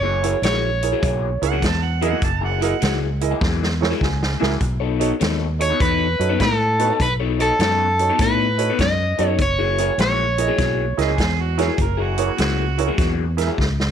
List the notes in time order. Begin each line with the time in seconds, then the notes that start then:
Already playing: F#1 C#5
0.03 F#3 A#3 E4 G#4
0.23 F#3 A#3 E4 G#4 A#4 C#5, closed hi-hat
0.42 A#1 F#3 A#3 E4 G#4 C#5, snare, closed hi-hat
0.82 E4 G#4 A#4 C#5, muted clean electric guitar stroke, closed hi-hat
0.92 F#3 A#3 E4 G#4
1.02 B1 F#3 A#3 E4 G#4, kick, closed hi-hat
1.42 C#2 E4 G#4 A#4 C#5 F#5, closed hi-hat
1.52 F#3 A#3 E4 G#4
1.62 E2 A5, kick, snare, closed hi-hat
1.85 F#5
2.01 F#3 A#3 E4 G#4 A#4 D#5 F#5, closed hi-hat
2.12 F#3 A#3 E4 G#4
2.22 F#1 A5, kick, closed hi-hat
2.41 F#3 A#3 E4 G#4 F#5
2.60 F#3 A#3 E4 G#4 A#4 D#5 F#5, closed hi-hat
2.81 C#2 F#3 A#3 E4 G#4, snare, closed hi-hat
3.21 E4 G#4 A#4 D#5, muted clean electric guitar stroke, closed hi-hat
3.31 F#3 A#3 E4 G#4
3.40 E2 F#3 A#3 E4 G#4, kick, snare
3.63 snare
3.81 E4 G#4 A#4 C#5, snare
3.90 F#3 A#3 E4 G#4
4.01 C#2 G#5, kick, snare
4.23 snare
4.40 C#2 F#3 A#3 E4 G#4 A#4 E5, snare
4.50 F#3 A#3 E4 G#4
4.61 B1, kick, closed hi-hat
4.80 B3 D#4 A4 C#5
5.00 B3 D#4 F#4 A4 C#5, closed hi-hat
5.20 D#2 B3 D#4 A4 C#5, snare, closed hi-hat
5.59 D#4 F#4 A4 C#5, muted clean electric guitar stroke, closed hi-hat
5.70 B3 D#4 A4 C#5
5.80 E2 B3 D#4 A4 B4 C#5, kick, closed hi-hat
6.19 F#2 D#4 F#4 A4 C#5, closed hi-hat
6.29 B3 D#4 A4 C#5
6.40 A2 A4, kick, snare, closed hi-hat
6.79 B3 D#4 F#4 A4 B4 C#5, closed hi-hat
6.89 B3 D#4 A4 C#5
7.00 B1 B4, kick, closed hi-hat
7.20 B3 D#4 A4 C#5
7.39 B3 D#4 F#4 A4 C#5 D#5, closed hi-hat
7.59 F#2 B3 D#4 A4 C#5, snare, closed hi-hat
7.99 D#4 F#4 A4 C#5, muted clean electric guitar stroke, closed hi-hat
8.10 B3 D#4 A4 C#5
8.19 A2 B3 D#4 A4 B4 C#5, kick, snare, closed hi-hat
8.58 D#4 F#4 A4 C#5, closed hi-hat
8.70 B3 D#4 A4 C#5
8.79 F#2 D#5, kick, snare, closed hi-hat
9.18 F#2 B3 D#4 F#4 A4 C#5 D#5, closed hi-hat
9.28 B3 D#4 A4 C#5
9.38 F#1 C#5, kick, closed hi-hat
9.58 F#3 A#3 E4 G#4
9.78 F#3 A#3 E4 G#4 A#4 C#5, closed hi-hat
9.98 A#1 F#3 A#3 E4 G#4 C#5, snare, closed hi-hat
10.38 E4 G#4 A#4 D#5, muted clean electric guitar stroke, closed hi-hat
10.48 F#3 A#3 E4 G#4
10.58 B1 F#3 A#3 E4 G#4, kick, snare, closed hi-hat
10.97 C#2 E4 G#4 A#4 D#5, snare, closed hi-hat
11.08 F#3 A#3 E4 G#4
11.18 E2, kick, snare, closed hi-hat
11.41 F#4
11.58 F#3 A#3 E4 G#4 A#4 C#5, snare, closed hi-hat
11.62 G#4
11.67 F#3 A#3 E4 G#4
11.78 F#1 A#4, kick, closed hi-hat
11.97 F#3 A#3 E4 G#4
12.02 F#4
12.17 F#3 A#3 E4 G#4 A#4 C#5, closed hi-hat
12.37 C#2 F#3 A#3 E4 G#4, snare, closed hi-hat
12.78 E4 G#4 A#4 C#5, muted clean electric guitar stroke, closed hi-hat
12.87 F#3 A#3 E4 G#4
12.97 E2 F#3 A#3 E4 G#4, kick, snare, closed hi-hat
13.37 E4 G#4 A#4 E5, snare, closed hi-hat
13.47 F#3 A#3 E4 G#4
13.58 C#2, kick, snare
13.80 snare